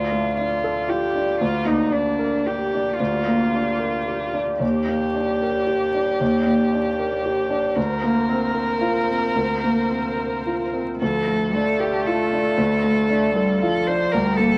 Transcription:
Already playing: grand piano D2, string section A3 F4 D5, violin F4
0.12 grand piano A3
0.37 grand piano D4, violin F4
0.64 grand piano A4
0.88 grand piano F4, violin G4
1.15 grand piano D4
1.40 grand piano D2, string section A#3 G4, violin F4
1.65 grand piano A#3, violin D#4
1.92 grand piano D4, violin D4
2.19 grand piano A#4
2.46 grand piano G4, violin G4
2.74 grand piano D4
2.99 grand piano D2, violin F4
3.27 grand piano A#3
3.54 grand piano D4
3.79 grand piano A#4
4.08 grand piano G4
4.34 grand piano D4
4.60 grand piano D#2, violin G4, string section D5
4.88 grand piano A#3
5.15 grand piano D4
5.42 grand piano A#4
5.67 grand piano G4
5.94 grand piano D4
6.20 grand piano D#2
6.46 grand piano A#3
6.73 grand piano D4
6.99 grand piano A#4
7.26 grand piano G4
7.50 grand piano D4
7.75 grand piano D2, string section A#3 A#4 C5, violin A#4
8.03 grand piano A#3
8.29 grand piano C4
8.54 grand piano A#4
8.81 grand piano F4
9.10 grand piano C4
9.36 grand piano D2
9.64 grand piano A#3
9.91 grand piano C4
10.17 grand piano A#4
10.46 grand piano F4
10.73 grand piano C4
11.01 grand piano D2, cello F3, string section A3 F4 A4, violin A4
11.27 grand piano A3
11.54 cello A3, grand piano D4, violin A4
11.80 violin G4, grand piano A4
12.06 grand piano F4, violin A4
12.33 grand piano D4
12.57 grand piano D2
12.84 grand piano A3
13.10 cello A3, grand piano D4
13.35 cello G3, grand piano A4
13.61 cello F3, grand piano F4, violin A4
13.87 grand piano D4, violin C5
14.12 grand piano D2, cello G3, string section A#3 G4, violin A#4
14.37 grand piano A#3, violin A4

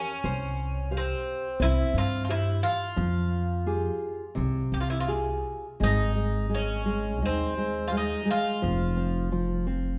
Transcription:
Already playing: bouzouki C#4, nylon-string guitar G4 A#4 F5
0.24 upright bass C2, nylon-string guitar C5
0.91 nylon-string guitar G4 C5 F5
0.97 bouzouki C4
1.60 upright bass C2, nylon-string guitar C4, bouzouki E4
1.94 upright bass G2, bouzouki F4
2.25 bouzouki F4
2.29 bouzouki E4, nylon-string guitar G4 C5 E5
2.63 bouzouki F4
2.96 upright bass F2, nylon-string guitar F3
3.66 nylon-string guitar F4 G4 G#4
4.35 upright bass C2, nylon-string guitar C3
4.72 upright bass C2, bouzouki G4
4.80 bouzouki F4
4.90 bouzouki E4
5.00 bouzouki F4
5.08 nylon-string guitar F4 G4 G#4
5.80 upright bass G#1, nylon-string guitar G#3, bouzouki D#4
6.15 nylon-string guitar G#3
6.49 nylon-string guitar G#3
6.54 bouzouki C#4
6.86 nylon-string guitar G#3
7.22 upright bass D#2, nylon-string guitar G#3, bouzouki C4
7.57 nylon-string guitar G#3
7.88 bouzouki F4
7.92 nylon-string guitar G#3
7.97 bouzouki D#4
8.25 nylon-string guitar G#3
8.31 bouzouki F4
8.62 upright bass F1, nylon-string guitar F3
8.97 nylon-string guitar C4
9.32 nylon-string guitar F3
9.67 nylon-string guitar C4

